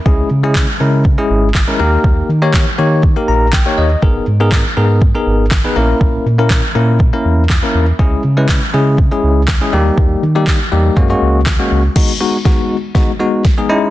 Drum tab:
CC |--------|--------|--------|--------|
CP |--x---x-|--x---x-|--x---x-|--x---x-|
SD |--o---o-|--o---o-|--o---o-|--o---o-|
BD |o-o-o-o-|o-o-o-o-|o-o-o-o-|o-o-o-o-|

CC |--------|--------|x-------|
CP |--x---x-|--x---x-|--------|
SD |--o---o-|--o---o-|o-o-o-o-|
BD |o-o-o-o-|o-o-o-o-|o-o-o-o-|